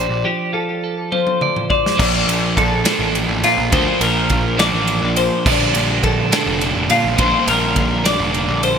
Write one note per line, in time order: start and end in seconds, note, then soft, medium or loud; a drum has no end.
0.00 0.22 A#2 medium
0.00 0.24 F3 medium
0.00 0.53 D4 medium
0.00 0.22 G4 medium
0.00 1.42 C5 medium
0.00 0.25 D5 medium
0.09 0.23 A#1 loud
0.25 3.73 F3 medium
0.25 0.53 G4 medium
0.53 1.11 F4 medium
0.53 1.12 A4 medium
0.84 1.96 A4 medium
1.12 1.96 F4 medium
1.12 1.69 C5 medium
1.12 high tom medium
1.27 high tom medium
1.41 1.71 D5 medium
1.41 mid tom medium
1.56 mid tom medium
1.70 1.96 C5 medium
1.70 1.98 D5 medium
1.70 kick medium
1.86 snare medium
1.97 2.26 A#1 loud
1.97 2.88 A#2 medium
1.97 2.86 F3 medium
1.97 2.85 A#3 loud
1.97 2.84 D4 medium
1.97 2.57 D5 medium
1.97 kick loud
1.97 crash loud
2.28 2.55 A#1 loud
2.28 ride medium
2.57 2.84 A#1 medium
2.57 3.15 A4 medium
2.57 kick medium
2.57 ride medium
2.84 3.70 A#2 medium
2.84 3.72 F3 medium
2.84 3.73 A#3 loud
2.84 3.74 D4 medium
2.84 snare loud
2.84 ride loud
2.99 3.26 A1 loud
3.15 ride medium
3.28 3.42 A1 loud
3.43 3.57 A#2 medium
3.43 3.73 F4 medium
3.43 ride medium
3.57 3.71 A#1 loud
3.71 3.86 D2 loud
3.71 4.61 A#2 medium
3.71 4.60 F3 medium
3.71 4.58 A#3 loud
3.71 4.57 D4 loud
3.71 4.01 C5 loud
3.71 kick loud
3.71 ride loud
4.01 4.28 A#1 loud
4.01 4.59 A#4 medium
4.01 ride medium
4.30 4.70 A#1 loud
4.30 kick medium
4.30 ride medium
4.57 5.45 A#2 medium
4.57 5.46 F3 medium
4.57 5.47 A#3 medium
4.57 5.48 D4 medium
4.57 5.17 D5 loud
4.57 snare loud
4.57 ride medium
4.73 5.00 A1 medium
4.87 ride medium
5.02 5.29 A#1 loud
5.16 5.47 C5 medium
5.16 ride medium
5.45 5.72 A#1 loud
5.45 6.34 A#2 medium
5.45 6.31 D3 medium
5.45 6.33 G3 medium
5.45 6.31 A#3 loud
5.45 6.31 D4 loud
5.45 6.04 D5 medium
5.45 kick loud
5.45 crash loud
5.75 6.01 A#1 medium
5.75 ride medium
6.03 6.30 A#1 medium
6.03 6.62 A4 medium
6.03 kick medium
6.03 ride medium
6.31 7.17 A#2 medium
6.31 7.17 D3 medium
6.31 7.18 G3 medium
6.31 7.20 A#3 medium
6.31 7.20 D4 loud
6.31 snare loud
6.31 ride loud
6.46 6.73 F1 loud
6.61 ride medium
6.75 6.89 F1 loud
6.90 7.03 A#2 medium
6.90 7.19 F4 medium
6.90 ride medium
7.04 7.18 A#1 loud
7.17 7.32 A#1 loud
7.17 8.07 A#2 medium
7.17 8.03 D3 medium
7.17 8.04 G3 medium
7.17 8.04 A#3 medium
7.17 8.04 D4 medium
7.17 7.48 C5 medium
7.17 kick loud
7.17 ride loud
7.47 7.74 A#1 loud
7.47 8.06 A#4 medium
7.47 ride medium
7.76 8.16 A#1 loud
7.76 kick medium
7.76 ride medium
8.04 8.79 A#2 medium
8.04 8.79 D3 medium
8.04 8.79 G3 medium
8.04 8.79 A#3 medium
8.04 8.79 D4 medium
8.04 8.63 D5 medium
8.04 snare loud
8.04 ride loud
8.19 8.46 F1 medium
8.34 ride medium
8.48 8.75 A#1 medium
8.63 8.79 C5 medium
8.63 ride medium